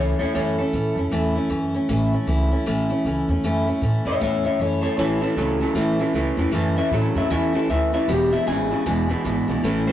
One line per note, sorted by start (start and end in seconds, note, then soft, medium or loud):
0.00 0.11 C#2 medium
0.00 0.20 E3 medium
0.00 0.20 A3 medium
0.00 0.20 C#4 medium
0.00 0.19 E4 medium
0.00 0.18 A4 medium
0.00 0.18 C#5 medium
0.19 0.29 E2 medium
0.19 0.35 A3 soft
0.19 0.35 C#4 medium
0.19 0.35 E4 medium
0.19 0.33 A4 medium
0.19 0.34 C#5 loud
0.35 0.59 F#2 medium
0.35 0.59 A2 medium
0.35 0.59 E3 medium
0.35 0.59 A3 medium
0.35 0.59 C#4 medium
0.35 0.57 E4 loud
0.35 0.57 A4 medium
0.35 0.58 C#5 medium
0.59 0.73 A3 soft
0.59 0.74 C#4 medium
0.59 0.74 E4 medium
0.59 1.71 A4 loud
0.73 0.88 A2 medium
0.73 0.97 E3 medium
0.73 0.97 A3 medium
0.73 0.97 C#4 medium
0.73 0.96 E4 medium
0.96 1.06 F#2 medium
0.96 1.11 A3 soft
0.96 1.11 C#4 medium
0.96 1.11 E4 medium
1.11 1.36 E2 medium
1.11 1.35 A2 medium
1.11 1.36 E3 medium
1.11 1.36 A3 loud
1.11 1.35 C#4 medium
1.11 1.34 E4 loud
1.35 1.49 A3 medium
1.35 1.50 C#4 medium
1.35 1.51 E4 medium
1.50 1.75 F#2 medium
1.50 1.74 E3 medium
1.50 1.74 A3 medium
1.50 1.74 C#4 medium
1.50 1.73 E4 medium
1.74 1.89 A3 medium
1.74 1.89 C#4 medium
1.74 1.89 E4 medium
1.89 2.13 A1 medium
1.89 2.13 A2 loud
1.89 2.13 E3 medium
1.89 2.13 A3 medium
1.89 2.12 C#4 medium
1.89 2.11 E4 medium
2.12 2.27 A3 medium
2.12 2.27 C#4 medium
2.12 2.28 E4 medium
2.27 2.52 C#2 loud
2.27 2.51 E3 medium
2.27 2.51 A3 medium
2.27 2.50 C#4 medium
2.27 2.50 E4 medium
2.51 2.66 A3 medium
2.51 2.66 C#4 medium
2.51 2.66 E4 medium
2.66 2.91 A1 medium
2.66 2.90 A2 medium
2.66 2.90 E3 medium
2.66 2.90 A3 loud
2.66 2.90 C#4 medium
2.66 2.88 E4 loud
2.89 3.05 A3 medium
2.89 3.05 C#4 medium
2.89 3.05 E4 medium
3.05 3.20 C#2 medium
3.05 3.29 E3 medium
3.05 3.29 A3 medium
3.05 3.29 C#4 medium
3.05 3.28 E4 medium
3.28 3.38 E2 medium
3.28 3.43 A3 medium
3.28 3.44 C#4 medium
3.28 3.44 E4 medium
3.43 3.68 F#2 medium
3.43 3.67 A2 medium
3.43 3.68 E3 medium
3.43 3.67 A3 medium
3.43 3.67 C#4 loud
3.43 3.66 E4 loud
3.67 3.82 A3 medium
3.67 3.82 C#4 medium
3.67 3.82 E4 medium
3.82 3.97 A2 medium
3.82 4.06 E3 medium
3.82 4.06 A3 medium
3.82 4.05 C#4 medium
3.82 4.04 E4 medium
4.05 4.15 F#2 medium
4.05 4.20 A3 soft
4.05 4.20 C#4 soft
4.05 4.20 E4 medium
4.05 4.21 C#5 medium
4.05 4.21 E5 medium
4.20 4.46 E2 loud
4.20 4.44 A2 medium
4.20 4.45 E3 medium
4.20 4.45 A3 medium
4.20 4.44 C#4 medium
4.20 4.43 E4 medium
4.20 4.44 C#5 medium
4.20 4.45 E5 medium
4.44 4.59 A3 soft
4.44 4.59 C#4 medium
4.44 4.60 E4 medium
4.44 4.60 C#5 medium
4.44 4.61 E5 medium
4.59 4.84 F#2 medium
4.59 4.83 E3 medium
4.59 4.84 A3 medium
4.59 4.83 C#4 medium
4.59 4.82 E4 medium
4.59 4.81 A4 medium
4.59 4.82 C#5 medium
4.82 4.98 A3 soft
4.82 4.98 C#4 soft
4.82 4.98 E4 medium
4.82 4.96 A4 medium
4.82 4.96 C#5 medium
4.97 5.23 A1 medium
4.97 5.22 A2 medium
4.97 5.20 A2 medium
4.97 5.22 E3 medium
4.97 5.20 E3 loud
4.97 5.22 A3 medium
4.97 5.21 C#4 medium
4.97 5.20 E4 medium
4.97 5.20 A4 medium
4.97 5.21 C#5 loud
5.21 5.36 A2 medium
5.21 5.36 E3 medium
5.21 5.36 A3 soft
5.21 5.37 C#4 medium
5.21 5.37 E4 medium
5.21 6.34 A4 loud
5.36 5.61 C#2 loud
5.36 5.59 A2 medium
5.36 5.61 E3 medium
5.36 5.59 F#3 medium
5.36 5.61 A3 medium
5.36 5.60 C#4 medium
5.36 5.59 E4 medium
5.60 5.75 A2 medium
5.60 5.75 F#3 medium
5.60 5.74 A3 soft
5.60 5.75 C#4 soft
5.60 5.75 E4 medium
5.74 5.99 A1 medium
5.74 5.99 A2 medium
5.74 5.98 A2 medium
5.74 5.99 E3 medium
5.74 5.98 E3 medium
5.74 6.00 A3 medium
5.74 5.99 C#4 medium
5.74 5.98 E4 loud
6.00 6.13 A2 medium
6.00 6.14 E3 medium
6.00 6.14 A3 medium
6.00 6.14 C#4 medium
6.00 6.15 E4 medium
6.14 6.29 C#2 medium
6.14 6.37 A2 medium
6.14 6.38 E3 medium
6.14 6.37 E3 medium
6.14 6.38 A3 medium
6.14 6.37 C#4 medium
6.14 6.36 E4 medium
6.37 6.47 E2 medium
6.37 6.52 A2 medium
6.37 6.52 E3 medium
6.37 6.51 A3 medium
6.37 6.52 C#4 medium
6.37 6.52 E4 medium
6.52 6.77 F#2 medium
6.52 6.76 A2 medium
6.52 6.75 A2 medium
6.52 6.77 E3 medium
6.52 6.76 E3 loud
6.52 6.77 A3 medium
6.52 6.76 C#4 loud
6.52 6.74 E4 loud
6.76 6.91 A2 medium
6.76 6.91 E3 medium
6.76 6.90 A3 soft
6.76 6.91 C#4 medium
6.76 6.91 E4 medium
6.76 6.92 E5 loud
6.91 7.06 A2 medium
6.91 7.14 A2 medium
6.91 7.16 E3 medium
6.91 7.14 F#3 loud
6.91 7.16 A3 medium
6.91 7.15 C#4 medium
6.91 7.14 E4 medium
6.91 7.16 A4 medium
7.15 7.25 F#2 medium
7.15 7.30 A2 medium
7.15 7.30 F#3 medium
7.15 7.29 A3 soft
7.15 7.30 C#4 medium
7.15 7.30 E4 medium
7.15 7.30 E5 loud
7.30 7.55 E2 medium
7.30 7.54 A2 medium
7.30 7.53 A2 medium
7.30 7.54 E3 medium
7.30 7.53 E3 medium
7.30 7.54 A3 medium
7.30 7.53 C#4 medium
7.30 7.52 E4 medium
7.30 7.54 E5 loud
7.53 7.68 A2 medium
7.53 7.69 E3 medium
7.53 7.68 A3 soft
7.53 7.69 C#4 soft
7.53 7.69 E4 medium
7.53 7.70 A4 loud
7.69 7.94 D2 medium
7.69 7.91 A2 medium
7.69 7.93 E3 medium
7.69 7.92 E3 medium
7.69 7.94 A3 medium
7.69 7.93 C#4 medium
7.69 7.92 E4 medium
7.69 7.93 E5 medium
7.93 8.07 A2 medium
7.93 8.07 E3 medium
7.93 8.09 A3 soft
7.93 8.09 C#4 medium
7.93 8.08 E4 medium
7.93 8.09 E5 loud
8.08 8.33 E1 medium
8.08 8.32 E2 medium
8.08 8.30 E2 medium
8.08 8.33 B2 medium
8.08 8.30 B2 loud
8.08 8.32 E3 medium
8.08 8.33 G#3 medium
8.08 8.32 D4 medium
8.08 8.31 E4 medium
8.08 8.32 G4 medium
8.32 8.46 E2 medium
8.32 8.46 B2 medium
8.32 8.46 E3 soft
8.32 8.47 G#3 soft
8.32 8.47 D4 medium
8.32 8.47 E4 medium
8.32 8.47 E5 medium
8.47 8.72 G#1 medium
8.47 8.69 E2 medium
8.47 8.69 C#3 medium
8.47 8.71 E3 medium
8.47 8.70 G#3 medium
8.47 8.70 D4 medium
8.47 8.69 E4 medium
8.47 9.60 G#5 loud
8.71 8.85 E2 medium
8.71 8.85 C#3 medium
8.71 8.85 E3 soft
8.71 8.85 G#3 soft
8.71 8.86 D4 medium
8.71 8.86 E4 medium
8.86 9.11 E1 medium
8.86 9.10 E2 medium
8.86 9.08 E2 medium
8.86 9.10 B2 medium
8.86 9.08 B2 medium
8.86 9.10 E3 medium
8.86 9.09 G#3 medium
8.86 9.09 D4 medium
8.86 9.08 E4 medium
9.09 9.23 E2 medium
9.09 9.24 B2 medium
9.09 9.23 E3 medium
9.09 9.24 G#3 medium
9.09 9.24 D4 medium
9.09 9.25 E4 medium
9.25 9.40 G#1 medium
9.25 9.46 E2 medium
9.25 9.47 B2 medium
9.25 9.49 E3 medium
9.25 9.48 G#3 medium
9.25 9.47 D4 medium
9.25 9.46 E4 medium
9.48 9.58 B1 medium
9.48 9.62 E2 medium
9.48 9.63 B2 medium
9.48 9.63 E3 medium
9.48 9.64 G#3 medium
9.48 9.64 D4 medium
9.48 9.63 E4 medium
9.63 9.88 A1 medium
9.63 9.87 A2 medium
9.63 9.85 A2 medium
9.63 9.88 E3 loud
9.63 9.86 E3 loud
9.63 9.88 A3 loud
9.63 9.87 C#4 medium
9.63 9.86 E4 loud
9.87 9.92 A2 medium
9.87 9.92 E3 medium
9.87 9.92 A3 soft
9.87 9.92 C#4 soft
9.87 9.92 E4 medium
9.87 9.92 C5 loud